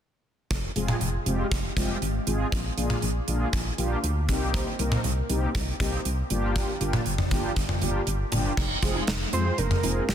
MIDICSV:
0, 0, Header, 1, 6, 480
1, 0, Start_track
1, 0, Tempo, 504202
1, 483, Time_signature, 4, 2, 24, 8
1, 9659, End_track
2, 0, Start_track
2, 0, Title_t, "Analog synth lead"
2, 0, Program_c, 0, 81
2, 8883, Note_on_c, 0, 72, 89
2, 9123, Note_on_c, 0, 70, 91
2, 9137, Note_off_c, 0, 72, 0
2, 9599, Note_off_c, 0, 70, 0
2, 9605, Note_on_c, 0, 68, 92
2, 9659, Note_off_c, 0, 68, 0
2, 9659, End_track
3, 0, Start_track
3, 0, Title_t, "Synth arpeggio sound"
3, 0, Program_c, 1, 84
3, 8162, Note_on_c, 1, 63, 90
3, 8330, Note_off_c, 1, 63, 0
3, 8403, Note_on_c, 1, 65, 80
3, 8487, Note_off_c, 1, 65, 0
3, 8523, Note_on_c, 1, 63, 74
3, 8607, Note_off_c, 1, 63, 0
3, 8643, Note_on_c, 1, 63, 81
3, 8811, Note_off_c, 1, 63, 0
3, 8883, Note_on_c, 1, 65, 81
3, 8967, Note_off_c, 1, 65, 0
3, 9004, Note_on_c, 1, 65, 72
3, 9087, Note_off_c, 1, 65, 0
3, 9124, Note_on_c, 1, 62, 84
3, 9291, Note_off_c, 1, 62, 0
3, 9363, Note_on_c, 1, 63, 79
3, 9531, Note_off_c, 1, 63, 0
3, 9602, Note_on_c, 1, 65, 82
3, 9659, Note_off_c, 1, 65, 0
3, 9659, End_track
4, 0, Start_track
4, 0, Title_t, "Analog polysynth"
4, 0, Program_c, 2, 90
4, 722, Note_on_c, 2, 68, 91
4, 723, Note_on_c, 2, 56, 82
4, 723, Note_on_c, 2, 60, 76
4, 723, Note_on_c, 2, 65, 74
4, 916, Note_off_c, 2, 68, 0
4, 917, Note_off_c, 2, 56, 0
4, 917, Note_off_c, 2, 60, 0
4, 917, Note_off_c, 2, 65, 0
4, 1203, Note_on_c, 2, 56, 84
4, 1203, Note_on_c, 2, 60, 74
4, 1203, Note_on_c, 2, 65, 73
4, 1203, Note_on_c, 2, 67, 92
4, 1397, Note_off_c, 2, 56, 0
4, 1397, Note_off_c, 2, 60, 0
4, 1397, Note_off_c, 2, 65, 0
4, 1397, Note_off_c, 2, 67, 0
4, 1682, Note_on_c, 2, 60, 79
4, 1683, Note_on_c, 2, 56, 84
4, 1683, Note_on_c, 2, 65, 79
4, 1683, Note_on_c, 2, 67, 93
4, 1876, Note_off_c, 2, 60, 0
4, 1877, Note_off_c, 2, 56, 0
4, 1877, Note_off_c, 2, 65, 0
4, 1877, Note_off_c, 2, 67, 0
4, 2162, Note_on_c, 2, 56, 82
4, 2162, Note_on_c, 2, 60, 76
4, 2162, Note_on_c, 2, 65, 78
4, 2162, Note_on_c, 2, 68, 97
4, 2356, Note_off_c, 2, 56, 0
4, 2356, Note_off_c, 2, 65, 0
4, 2356, Note_off_c, 2, 68, 0
4, 2357, Note_off_c, 2, 60, 0
4, 2643, Note_on_c, 2, 58, 81
4, 2643, Note_on_c, 2, 62, 76
4, 2643, Note_on_c, 2, 65, 77
4, 2643, Note_on_c, 2, 68, 89
4, 2837, Note_off_c, 2, 58, 0
4, 2837, Note_off_c, 2, 62, 0
4, 2837, Note_off_c, 2, 65, 0
4, 2837, Note_off_c, 2, 68, 0
4, 3122, Note_on_c, 2, 58, 84
4, 3122, Note_on_c, 2, 62, 76
4, 3122, Note_on_c, 2, 65, 77
4, 3122, Note_on_c, 2, 68, 87
4, 3316, Note_off_c, 2, 58, 0
4, 3316, Note_off_c, 2, 62, 0
4, 3316, Note_off_c, 2, 65, 0
4, 3316, Note_off_c, 2, 68, 0
4, 3602, Note_on_c, 2, 58, 83
4, 3602, Note_on_c, 2, 62, 76
4, 3602, Note_on_c, 2, 65, 79
4, 3602, Note_on_c, 2, 67, 94
4, 3796, Note_off_c, 2, 58, 0
4, 3796, Note_off_c, 2, 62, 0
4, 3796, Note_off_c, 2, 65, 0
4, 3796, Note_off_c, 2, 67, 0
4, 4081, Note_on_c, 2, 63, 83
4, 4081, Note_on_c, 2, 67, 99
4, 4082, Note_on_c, 2, 58, 88
4, 4082, Note_on_c, 2, 60, 83
4, 4470, Note_off_c, 2, 58, 0
4, 4470, Note_off_c, 2, 60, 0
4, 4470, Note_off_c, 2, 63, 0
4, 4470, Note_off_c, 2, 67, 0
4, 4562, Note_on_c, 2, 60, 76
4, 4562, Note_on_c, 2, 63, 76
4, 4562, Note_on_c, 2, 70, 88
4, 4563, Note_on_c, 2, 58, 86
4, 4756, Note_off_c, 2, 60, 0
4, 4756, Note_off_c, 2, 63, 0
4, 4756, Note_off_c, 2, 70, 0
4, 4757, Note_off_c, 2, 58, 0
4, 5043, Note_on_c, 2, 58, 82
4, 5043, Note_on_c, 2, 63, 75
4, 5043, Note_on_c, 2, 67, 94
4, 5044, Note_on_c, 2, 60, 78
4, 5237, Note_off_c, 2, 58, 0
4, 5237, Note_off_c, 2, 60, 0
4, 5237, Note_off_c, 2, 63, 0
4, 5237, Note_off_c, 2, 67, 0
4, 5522, Note_on_c, 2, 58, 87
4, 5523, Note_on_c, 2, 60, 80
4, 5523, Note_on_c, 2, 63, 78
4, 5523, Note_on_c, 2, 67, 92
4, 5717, Note_off_c, 2, 58, 0
4, 5717, Note_off_c, 2, 60, 0
4, 5717, Note_off_c, 2, 63, 0
4, 5717, Note_off_c, 2, 67, 0
4, 6003, Note_on_c, 2, 58, 89
4, 6003, Note_on_c, 2, 62, 81
4, 6003, Note_on_c, 2, 65, 80
4, 6003, Note_on_c, 2, 67, 103
4, 6391, Note_off_c, 2, 58, 0
4, 6391, Note_off_c, 2, 62, 0
4, 6391, Note_off_c, 2, 65, 0
4, 6391, Note_off_c, 2, 67, 0
4, 6482, Note_on_c, 2, 62, 76
4, 6483, Note_on_c, 2, 58, 83
4, 6483, Note_on_c, 2, 65, 76
4, 6483, Note_on_c, 2, 67, 95
4, 6676, Note_off_c, 2, 62, 0
4, 6677, Note_off_c, 2, 58, 0
4, 6677, Note_off_c, 2, 65, 0
4, 6677, Note_off_c, 2, 67, 0
4, 6963, Note_on_c, 2, 58, 83
4, 6963, Note_on_c, 2, 65, 77
4, 6963, Note_on_c, 2, 67, 93
4, 6964, Note_on_c, 2, 62, 77
4, 7157, Note_off_c, 2, 58, 0
4, 7157, Note_off_c, 2, 62, 0
4, 7157, Note_off_c, 2, 65, 0
4, 7157, Note_off_c, 2, 67, 0
4, 7442, Note_on_c, 2, 58, 89
4, 7442, Note_on_c, 2, 67, 96
4, 7443, Note_on_c, 2, 62, 76
4, 7443, Note_on_c, 2, 65, 75
4, 7636, Note_off_c, 2, 67, 0
4, 7637, Note_off_c, 2, 58, 0
4, 7637, Note_off_c, 2, 62, 0
4, 7637, Note_off_c, 2, 65, 0
4, 7923, Note_on_c, 2, 58, 84
4, 7923, Note_on_c, 2, 62, 78
4, 7923, Note_on_c, 2, 65, 78
4, 7923, Note_on_c, 2, 67, 96
4, 8117, Note_off_c, 2, 58, 0
4, 8117, Note_off_c, 2, 62, 0
4, 8117, Note_off_c, 2, 65, 0
4, 8117, Note_off_c, 2, 67, 0
4, 8402, Note_on_c, 2, 60, 79
4, 8403, Note_on_c, 2, 56, 89
4, 8403, Note_on_c, 2, 65, 81
4, 8403, Note_on_c, 2, 68, 96
4, 8597, Note_off_c, 2, 56, 0
4, 8597, Note_off_c, 2, 60, 0
4, 8597, Note_off_c, 2, 65, 0
4, 8597, Note_off_c, 2, 68, 0
4, 8884, Note_on_c, 2, 56, 72
4, 8884, Note_on_c, 2, 60, 66
4, 8884, Note_on_c, 2, 65, 67
4, 8884, Note_on_c, 2, 68, 82
4, 9077, Note_off_c, 2, 56, 0
4, 9077, Note_off_c, 2, 60, 0
4, 9077, Note_off_c, 2, 65, 0
4, 9077, Note_off_c, 2, 68, 0
4, 9363, Note_on_c, 2, 56, 77
4, 9363, Note_on_c, 2, 60, 70
4, 9364, Note_on_c, 2, 65, 69
4, 9364, Note_on_c, 2, 68, 82
4, 9557, Note_off_c, 2, 56, 0
4, 9557, Note_off_c, 2, 60, 0
4, 9557, Note_off_c, 2, 65, 0
4, 9557, Note_off_c, 2, 68, 0
4, 9659, End_track
5, 0, Start_track
5, 0, Title_t, "FM bass"
5, 0, Program_c, 3, 39
5, 483, Note_on_c, 3, 29, 105
5, 651, Note_off_c, 3, 29, 0
5, 722, Note_on_c, 3, 29, 95
5, 890, Note_off_c, 3, 29, 0
5, 962, Note_on_c, 3, 29, 96
5, 1130, Note_off_c, 3, 29, 0
5, 1202, Note_on_c, 3, 29, 97
5, 1370, Note_off_c, 3, 29, 0
5, 1443, Note_on_c, 3, 29, 96
5, 1611, Note_off_c, 3, 29, 0
5, 1681, Note_on_c, 3, 29, 93
5, 1850, Note_off_c, 3, 29, 0
5, 1922, Note_on_c, 3, 32, 87
5, 2090, Note_off_c, 3, 32, 0
5, 2162, Note_on_c, 3, 32, 90
5, 2330, Note_off_c, 3, 32, 0
5, 2402, Note_on_c, 3, 34, 105
5, 2570, Note_off_c, 3, 34, 0
5, 2642, Note_on_c, 3, 34, 91
5, 2810, Note_off_c, 3, 34, 0
5, 2883, Note_on_c, 3, 34, 100
5, 3050, Note_off_c, 3, 34, 0
5, 3122, Note_on_c, 3, 34, 87
5, 3290, Note_off_c, 3, 34, 0
5, 3362, Note_on_c, 3, 34, 92
5, 3530, Note_off_c, 3, 34, 0
5, 3603, Note_on_c, 3, 34, 94
5, 3770, Note_off_c, 3, 34, 0
5, 3843, Note_on_c, 3, 38, 90
5, 4082, Note_on_c, 3, 36, 99
5, 4097, Note_off_c, 3, 38, 0
5, 4418, Note_off_c, 3, 36, 0
5, 4563, Note_on_c, 3, 36, 99
5, 4731, Note_off_c, 3, 36, 0
5, 4802, Note_on_c, 3, 36, 103
5, 4970, Note_off_c, 3, 36, 0
5, 5043, Note_on_c, 3, 36, 99
5, 5211, Note_off_c, 3, 36, 0
5, 5282, Note_on_c, 3, 36, 99
5, 5450, Note_off_c, 3, 36, 0
5, 5522, Note_on_c, 3, 36, 95
5, 5690, Note_off_c, 3, 36, 0
5, 5763, Note_on_c, 3, 36, 88
5, 5931, Note_off_c, 3, 36, 0
5, 6004, Note_on_c, 3, 31, 91
5, 6339, Note_off_c, 3, 31, 0
5, 6482, Note_on_c, 3, 31, 102
5, 6650, Note_off_c, 3, 31, 0
5, 6722, Note_on_c, 3, 31, 99
5, 6890, Note_off_c, 3, 31, 0
5, 6962, Note_on_c, 3, 31, 96
5, 7130, Note_off_c, 3, 31, 0
5, 7202, Note_on_c, 3, 31, 102
5, 7370, Note_off_c, 3, 31, 0
5, 7443, Note_on_c, 3, 31, 99
5, 7611, Note_off_c, 3, 31, 0
5, 7682, Note_on_c, 3, 31, 91
5, 7850, Note_off_c, 3, 31, 0
5, 7922, Note_on_c, 3, 31, 94
5, 8090, Note_off_c, 3, 31, 0
5, 8162, Note_on_c, 3, 29, 105
5, 8330, Note_off_c, 3, 29, 0
5, 8402, Note_on_c, 3, 29, 92
5, 8570, Note_off_c, 3, 29, 0
5, 8641, Note_on_c, 3, 29, 104
5, 8810, Note_off_c, 3, 29, 0
5, 8881, Note_on_c, 3, 41, 101
5, 9049, Note_off_c, 3, 41, 0
5, 9122, Note_on_c, 3, 29, 102
5, 9290, Note_off_c, 3, 29, 0
5, 9362, Note_on_c, 3, 29, 92
5, 9530, Note_off_c, 3, 29, 0
5, 9602, Note_on_c, 3, 29, 98
5, 9659, Note_off_c, 3, 29, 0
5, 9659, End_track
6, 0, Start_track
6, 0, Title_t, "Drums"
6, 483, Note_on_c, 9, 36, 103
6, 483, Note_on_c, 9, 42, 74
6, 578, Note_off_c, 9, 36, 0
6, 578, Note_off_c, 9, 42, 0
6, 723, Note_on_c, 9, 42, 71
6, 818, Note_off_c, 9, 42, 0
6, 842, Note_on_c, 9, 47, 88
6, 937, Note_off_c, 9, 47, 0
6, 960, Note_on_c, 9, 42, 59
6, 1056, Note_off_c, 9, 42, 0
6, 1203, Note_on_c, 9, 42, 65
6, 1298, Note_off_c, 9, 42, 0
6, 1442, Note_on_c, 9, 42, 71
6, 1443, Note_on_c, 9, 36, 89
6, 1537, Note_off_c, 9, 42, 0
6, 1538, Note_off_c, 9, 36, 0
6, 1681, Note_on_c, 9, 36, 85
6, 1682, Note_on_c, 9, 42, 78
6, 1777, Note_off_c, 9, 36, 0
6, 1777, Note_off_c, 9, 42, 0
6, 1923, Note_on_c, 9, 42, 70
6, 2019, Note_off_c, 9, 42, 0
6, 2160, Note_on_c, 9, 42, 63
6, 2256, Note_off_c, 9, 42, 0
6, 2402, Note_on_c, 9, 36, 104
6, 2402, Note_on_c, 9, 42, 72
6, 2497, Note_off_c, 9, 36, 0
6, 2497, Note_off_c, 9, 42, 0
6, 2642, Note_on_c, 9, 42, 75
6, 2738, Note_off_c, 9, 42, 0
6, 2760, Note_on_c, 9, 47, 91
6, 2856, Note_off_c, 9, 47, 0
6, 2878, Note_on_c, 9, 42, 62
6, 2974, Note_off_c, 9, 42, 0
6, 3120, Note_on_c, 9, 42, 64
6, 3216, Note_off_c, 9, 42, 0
6, 3360, Note_on_c, 9, 42, 73
6, 3362, Note_on_c, 9, 36, 91
6, 3456, Note_off_c, 9, 42, 0
6, 3457, Note_off_c, 9, 36, 0
6, 3602, Note_on_c, 9, 42, 75
6, 3697, Note_off_c, 9, 42, 0
6, 3843, Note_on_c, 9, 42, 69
6, 3938, Note_off_c, 9, 42, 0
6, 4080, Note_on_c, 9, 42, 65
6, 4082, Note_on_c, 9, 36, 78
6, 4176, Note_off_c, 9, 42, 0
6, 4177, Note_off_c, 9, 36, 0
6, 4322, Note_on_c, 9, 36, 104
6, 4322, Note_on_c, 9, 42, 73
6, 4417, Note_off_c, 9, 42, 0
6, 4418, Note_off_c, 9, 36, 0
6, 4562, Note_on_c, 9, 42, 75
6, 4657, Note_off_c, 9, 42, 0
6, 4681, Note_on_c, 9, 47, 90
6, 4776, Note_off_c, 9, 47, 0
6, 4799, Note_on_c, 9, 42, 63
6, 4894, Note_off_c, 9, 42, 0
6, 5041, Note_on_c, 9, 42, 63
6, 5136, Note_off_c, 9, 42, 0
6, 5282, Note_on_c, 9, 42, 76
6, 5283, Note_on_c, 9, 36, 91
6, 5377, Note_off_c, 9, 42, 0
6, 5378, Note_off_c, 9, 36, 0
6, 5522, Note_on_c, 9, 36, 87
6, 5522, Note_on_c, 9, 42, 77
6, 5617, Note_off_c, 9, 36, 0
6, 5617, Note_off_c, 9, 42, 0
6, 5763, Note_on_c, 9, 42, 69
6, 5858, Note_off_c, 9, 42, 0
6, 6000, Note_on_c, 9, 42, 65
6, 6095, Note_off_c, 9, 42, 0
6, 6242, Note_on_c, 9, 42, 74
6, 6243, Note_on_c, 9, 36, 102
6, 6337, Note_off_c, 9, 42, 0
6, 6338, Note_off_c, 9, 36, 0
6, 6481, Note_on_c, 9, 42, 75
6, 6577, Note_off_c, 9, 42, 0
6, 6601, Note_on_c, 9, 47, 92
6, 6696, Note_off_c, 9, 47, 0
6, 6719, Note_on_c, 9, 42, 62
6, 6814, Note_off_c, 9, 42, 0
6, 6839, Note_on_c, 9, 45, 81
6, 6934, Note_off_c, 9, 45, 0
6, 6960, Note_on_c, 9, 42, 64
6, 6962, Note_on_c, 9, 36, 88
6, 7055, Note_off_c, 9, 42, 0
6, 7057, Note_off_c, 9, 36, 0
6, 7200, Note_on_c, 9, 42, 75
6, 7202, Note_on_c, 9, 36, 91
6, 7296, Note_off_c, 9, 42, 0
6, 7297, Note_off_c, 9, 36, 0
6, 7321, Note_on_c, 9, 45, 85
6, 7416, Note_off_c, 9, 45, 0
6, 7440, Note_on_c, 9, 42, 75
6, 7536, Note_off_c, 9, 42, 0
6, 7682, Note_on_c, 9, 42, 72
6, 7777, Note_off_c, 9, 42, 0
6, 7919, Note_on_c, 9, 42, 65
6, 7923, Note_on_c, 9, 47, 61
6, 8015, Note_off_c, 9, 42, 0
6, 8018, Note_off_c, 9, 47, 0
6, 8161, Note_on_c, 9, 49, 82
6, 8162, Note_on_c, 9, 36, 111
6, 8257, Note_off_c, 9, 36, 0
6, 8257, Note_off_c, 9, 49, 0
6, 8401, Note_on_c, 9, 42, 74
6, 8402, Note_on_c, 9, 36, 93
6, 8497, Note_off_c, 9, 36, 0
6, 8497, Note_off_c, 9, 42, 0
6, 8639, Note_on_c, 9, 42, 65
6, 8643, Note_on_c, 9, 38, 101
6, 8734, Note_off_c, 9, 42, 0
6, 8738, Note_off_c, 9, 38, 0
6, 8881, Note_on_c, 9, 42, 68
6, 8976, Note_off_c, 9, 42, 0
6, 9121, Note_on_c, 9, 42, 76
6, 9216, Note_off_c, 9, 42, 0
6, 9242, Note_on_c, 9, 45, 87
6, 9337, Note_off_c, 9, 45, 0
6, 9362, Note_on_c, 9, 42, 79
6, 9457, Note_off_c, 9, 42, 0
6, 9603, Note_on_c, 9, 38, 109
6, 9603, Note_on_c, 9, 42, 74
6, 9659, Note_off_c, 9, 38, 0
6, 9659, Note_off_c, 9, 42, 0
6, 9659, End_track
0, 0, End_of_file